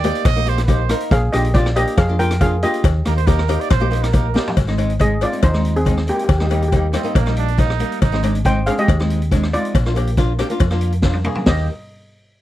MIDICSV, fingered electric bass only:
0, 0, Header, 1, 2, 480
1, 0, Start_track
1, 0, Key_signature, -3, "major"
1, 0, Tempo, 431344
1, 1250, Time_signature, 4, 2, 24, 8
1, 13818, End_track
2, 0, Start_track
2, 0, Title_t, "Fingered electric bass"
2, 0, Program_c, 0, 33
2, 0, Note_on_c, 0, 39, 86
2, 121, Note_off_c, 0, 39, 0
2, 281, Note_on_c, 0, 34, 103
2, 1018, Note_off_c, 0, 34, 0
2, 1242, Note_on_c, 0, 34, 112
2, 1428, Note_off_c, 0, 34, 0
2, 1494, Note_on_c, 0, 34, 85
2, 2041, Note_off_c, 0, 34, 0
2, 2200, Note_on_c, 0, 41, 98
2, 2935, Note_off_c, 0, 41, 0
2, 3162, Note_on_c, 0, 39, 120
2, 3347, Note_off_c, 0, 39, 0
2, 3418, Note_on_c, 0, 39, 84
2, 3963, Note_off_c, 0, 39, 0
2, 4128, Note_on_c, 0, 34, 94
2, 4861, Note_off_c, 0, 34, 0
2, 5089, Note_on_c, 0, 32, 91
2, 5822, Note_off_c, 0, 32, 0
2, 6046, Note_on_c, 0, 39, 86
2, 6780, Note_off_c, 0, 39, 0
2, 7000, Note_on_c, 0, 39, 96
2, 7737, Note_off_c, 0, 39, 0
2, 7964, Note_on_c, 0, 34, 93
2, 8700, Note_off_c, 0, 34, 0
2, 8927, Note_on_c, 0, 32, 96
2, 9662, Note_off_c, 0, 32, 0
2, 9886, Note_on_c, 0, 39, 96
2, 10621, Note_off_c, 0, 39, 0
2, 10850, Note_on_c, 0, 34, 103
2, 11584, Note_off_c, 0, 34, 0
2, 11801, Note_on_c, 0, 41, 96
2, 12538, Note_off_c, 0, 41, 0
2, 12765, Note_on_c, 0, 39, 95
2, 12990, Note_off_c, 0, 39, 0
2, 13818, End_track
0, 0, End_of_file